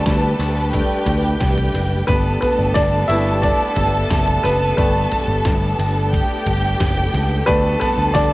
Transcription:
Already playing: grand piano G3 A3 B3 D4 B4 D5, string section G3 A3 D4 G4 B4, violin section A4 A5
0.06 picked electric bass D2, kick, snare, ride
0.39 picked electric bass D2, ride
0.73 grand piano G3 A3 D4, violin section G4 G5, kick, ride
1.06 picked electric bass D2, floor tom, ride
1.40 picked electric bass C2, kick, snare, ride
1.58 floor tom
1.74 picked electric bass F#1, snare, ride
2.07 picked electric bass G1, string section B3 A4, grand piano B3 B4, violin section A4 A5, kick, ride
2.41 grand piano B3 B4, floor tom, ride
2.59 picked electric bass G1
2.74 picked electric bass G1, grand piano D4 D5, kick, snare, ride
3.08 picked electric bass G1, grand piano G3 A3 B3 E4 E5, ride
3.42 grand piano D4 D5, kick, ride
3.76 picked electric bass G1, floor tom, ride
4.10 picked electric bass F#1, kick, snare, ride
4.27 floor tom
4.43 picked electric bass F#1, grand piano B3 B4, snare, ride
4.77 picked electric bass G1, grand piano G3 A3 B3 B4, kick, ride
5.12 floor tom, ride
5.28 picked electric bass G1
5.45 picked electric bass G1, kick, snare, ride
5.79 picked electric bass G1, ride
6.13 violin section G4 G5, kick, ride
6.46 picked electric bass G1, floor tom, ride
6.80 picked electric bass F#1, kick, snare, ride
6.97 floor tom
7.13 picked electric bass C#2, snare, ride
7.46 picked electric bass D2, grand piano G3 A3 B3 D4 B4, string section G3 A3 D4 G4, violin section A4 A5, kick, ride
7.80 grand piano B3 B4, floor tom, ride
7.98 picked electric bass D2
8.14 picked electric bass D2, grand piano D4 D5, kick, snare, ride

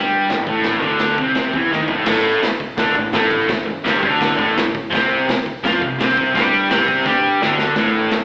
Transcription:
Already playing: picked electric bass G2, distorted electric guitar G3 G4
0.29 picked electric bass A1, distorted electric guitar A2, snare, crash
0.47 picked electric bass A1, distorted electric guitar A2 A3, kick
0.64 kick, snare, crash
0.82 picked electric bass D2, distorted electric guitar D3 D4, kick
0.99 snare, crash
1.18 picked electric bass C2, distorted electric guitar C3 C4, kick
1.35 snare, crash
1.53 picked electric bass E2, distorted electric guitar E3 E4, kick
1.71 picked electric bass D#2, distorted electric guitar D#3 D#4, snare
1.88 picked electric bass A1, distorted electric guitar A2 A3, floor tom
2.06 picked electric bass A1, distorted electric guitar A2 A3, kick, snare, crash
2.42 muted distorted electric guitar stroke, muted picked electric bass stroke, snare, open hi-hat
2.60 kick
2.77 picked electric bass D2, distorted electric guitar D3 D4, kick, snare, open hi-hat
2.95 picked electric bass A1, distorted electric guitar A2, kick
3.12 picked electric bass A1, distorted electric guitar A2 A3, snare, open hi-hat
3.31 kick
3.47 muted distorted electric guitar stroke, muted picked electric bass stroke, kick, snare, open hi-hat
3.66 muted distorted electric guitar stroke, muted picked electric bass stroke
3.84 picked electric bass G1, distorted electric guitar G2 G3, snare, open hi-hat
3.99 picked electric bass D2, distorted electric guitar D3 D4, kick
4.21 kick, snare, open hi-hat
4.37 picked electric bass A1, distorted electric guitar A2 A3, kick
4.55 picked electric bass A1, distorted electric guitar A2, snare, open hi-hat
4.75 kick
4.90 picked electric bass C2, distorted electric guitar C3 C4, kick, snare, open hi-hat
5.28 muted distorted electric guitar stroke, muted picked electric bass stroke, snare, open hi-hat
5.46 kick
5.63 picked electric bass F2, distorted electric guitar F3 F4, kick, snare, open hi-hat
5.82 picked electric bass C2, distorted electric guitar C3, kick
5.99 picked electric bass C2, distorted electric guitar C3 C4, snare, open hi-hat
6.17 kick
6.33 picked electric bass G2, distorted electric guitar G3 G4, kick, snare, open hi-hat
6.69 picked electric bass C2, distorted electric guitar C3 C4, snare, open hi-hat
6.88 kick
7.05 picked electric bass G2, distorted electric guitar G3 G4, kick, snare
7.41 picked electric bass D2, distorted electric guitar D3 D4, snare
7.58 snare
7.75 picked electric bass A1, distorted electric guitar A2 A3, kick, snare, open hi-hat
8.11 muted picked electric bass stroke, muted distorted electric guitar stroke, snare, open hi-hat

